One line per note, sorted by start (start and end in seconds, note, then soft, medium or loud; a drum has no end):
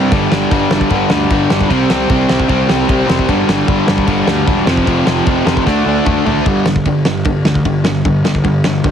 0.00 0.10 C3 medium
0.00 0.11 C3 medium
0.00 0.11 G3 medium
0.00 0.11 C4 loud
0.00 0.12 C4 medium
0.12 0.25 G1 medium
0.12 0.30 G2 medium
0.12 0.31 D3 medium
0.12 0.31 G3 loud
0.12 kick loud
0.12 crash medium
0.31 0.45 G1 medium
0.31 0.50 G2 medium
0.31 0.51 D3 medium
0.31 0.52 G3 loud
0.31 snare loud
0.51 0.65 G1 medium
0.51 0.71 G2 medium
0.51 0.71 D3 loud
0.51 0.72 G3 loud
0.51 kick loud
0.51 crash medium
0.71 0.85 G1 medium
0.71 0.89 G2 medium
0.71 0.90 D3 medium
0.71 0.91 G3 medium
0.71 snare loud
0.81 kick medium
0.90 1.04 G1 loud
0.90 1.10 G2 medium
0.90 1.10 D3 loud
0.90 1.11 G3 loud
0.90 kick loud
0.90 crash medium
1.10 1.24 D2 medium
1.10 1.30 G2 medium
1.10 1.30 D3 medium
1.10 1.31 G3 loud
1.10 snare loud
1.30 1.44 G1 loud
1.30 1.49 G2 medium
1.30 1.49 D3 loud
1.30 1.50 G3 medium
1.30 kick loud
1.30 crash medium
1.50 1.64 G1 medium
1.50 1.69 G2 medium
1.50 1.69 D3 loud
1.50 1.70 G3 loud
1.50 snare loud
1.61 kick medium
1.70 1.84 C2 medium
1.70 1.89 C3 loud
1.70 1.90 G3 loud
1.70 1.90 C4 loud
1.70 kick loud
1.70 crash medium
1.90 2.04 C2 medium
1.90 2.08 C3 medium
1.90 2.09 G3 medium
1.90 2.10 C4 medium
1.90 snare loud
2.09 2.23 C2 medium
2.09 2.28 C3 loud
2.09 2.28 G3 loud
2.09 2.28 C4 loud
2.09 kick loud
2.09 crash medium
2.29 2.43 C2 medium
2.29 2.47 C3 medium
2.29 2.47 G3 medium
2.29 2.48 C4 medium
2.29 snare loud
2.40 kick medium
2.48 2.62 C2 loud
2.48 2.67 C3 loud
2.48 2.67 G3 loud
2.48 2.68 C4 loud
2.48 kick loud
2.48 crash medium
2.68 2.83 C2 medium
2.68 2.87 C3 medium
2.68 2.87 G3 loud
2.68 2.88 C4 loud
2.68 snare loud
2.88 3.02 C2 loud
2.88 3.05 C3 loud
2.88 3.06 G3 loud
2.88 3.06 C4 loud
2.88 kick loud
2.88 crash medium
3.07 3.23 F1 loud
3.07 3.26 C3 medium
3.07 3.27 G3 loud
3.07 3.27 C4 loud
3.07 snare loud
3.19 kick medium
3.28 3.42 G1 loud
3.28 3.47 G2 loud
3.28 3.47 D3 loud
3.28 3.47 G3 loud
3.28 kick loud
3.28 crash medium
3.48 3.62 G1 medium
3.48 3.66 G2 medium
3.48 3.66 D3 medium
3.48 3.67 G3 loud
3.48 snare loud
3.67 3.81 G1 loud
3.67 3.85 G2 loud
3.67 3.85 D3 loud
3.67 3.86 G3 loud
3.67 kick loud
3.67 crash medium
3.86 4.01 G1 medium
3.86 4.05 G2 medium
3.86 4.05 D3 medium
3.86 4.06 G3 loud
3.86 snare loud
3.98 kick medium
4.06 4.21 G1 loud
4.06 4.25 G2 loud
4.06 4.25 D3 loud
4.06 4.25 G3 loud
4.06 kick loud
4.06 crash medium
4.26 4.40 D2 medium
4.26 4.44 G2 medium
4.26 4.44 D3 medium
4.26 4.45 G3 medium
4.26 snare loud
4.45 4.61 E1 loud
4.45 4.65 G2 loud
4.45 4.65 D3 loud
4.45 4.65 G3 loud
4.45 kick loud
4.45 crash medium
4.66 4.80 F1 medium
4.66 4.85 F2 loud
4.66 4.86 C3 loud
4.66 4.86 F3 loud
4.66 snare loud
4.77 kick medium
4.87 5.01 F1 medium
4.87 5.05 F2 loud
4.87 5.05 C3 loud
4.87 5.05 F3 loud
4.87 kick loud
4.87 crash medium
5.06 5.20 F1 medium
5.06 5.24 F2 medium
5.06 5.25 C3 medium
5.06 5.25 F3 loud
5.06 snare loud
5.25 5.40 F1 medium
5.25 5.45 F2 medium
5.25 5.45 C3 loud
5.25 5.46 F3 loud
5.25 kick loud
5.25 crash medium
5.46 5.59 F1 medium
5.46 5.65 F2 medium
5.46 5.65 C3 loud
5.46 5.65 F3 medium
5.46 snare loud
5.57 kick medium
5.66 5.80 D2 medium
5.66 5.84 D3 medium
5.66 5.84 A3 loud
5.66 5.85 D4 loud
5.66 kick loud
5.66 snare medium
5.85 5.99 D2 medium
5.85 6.04 D3 medium
5.85 6.04 A3 medium
5.85 6.05 D4 medium
6.06 6.19 D2 medium
6.06 6.24 D3 medium
6.06 6.24 A3 medium
6.06 6.25 D4 loud
6.06 kick loud
6.06 mid tom medium
6.25 6.39 D2 medium
6.25 6.44 D3 medium
6.25 6.44 A3 medium
6.25 6.45 D4 loud
6.25 floor tom loud
6.46 6.62 G1 medium
6.46 6.65 G2 loud
6.46 6.65 D3 medium
6.46 6.65 G3 loud
6.46 kick loud
6.46 ride medium
6.66 6.82 G1 medium
6.66 6.84 G2 medium
6.66 6.84 D3 medium
6.66 snare loud
6.76 kick medium
6.85 7.02 G1 medium
6.85 7.04 G2 medium
6.85 7.04 D3 medium
6.85 kick medium
6.85 ride medium
7.05 7.22 G1 medium
7.05 7.24 G2 medium
7.05 7.24 D3 medium
7.05 snare loud
7.25 7.42 G1 loud
7.25 7.44 G2 medium
7.25 7.44 D3 medium
7.25 kick loud
7.25 ride medium
7.45 7.62 D2 medium
7.45 7.63 G2 medium
7.45 7.63 D3 medium
7.45 snare loud
7.55 kick medium
7.65 7.81 G1 medium
7.65 7.83 G2 medium
7.65 7.83 D3 medium
7.65 kick medium
7.65 ride medium
7.84 8.01 G1 medium
7.84 8.02 G2 medium
7.84 8.02 D3 medium
7.84 snare loud
8.05 8.21 G1 loud
8.05 8.23 G2 medium
8.05 8.23 D3 medium
8.05 kick loud
8.05 ride medium
8.24 8.41 G1 medium
8.24 8.42 G2 medium
8.24 8.42 D3 medium
8.24 snare loud
8.35 kick medium
8.44 8.61 G1 medium
8.44 8.62 G2 medium
8.44 8.62 D3 medium
8.44 kick medium
8.44 ride medium
8.64 8.81 G1 medium
8.64 8.82 G2 medium
8.64 8.82 D3 medium
8.64 snare loud
8.84 8.91 G2 medium
8.84 8.91 D3 medium
8.84 kick loud
8.84 ride medium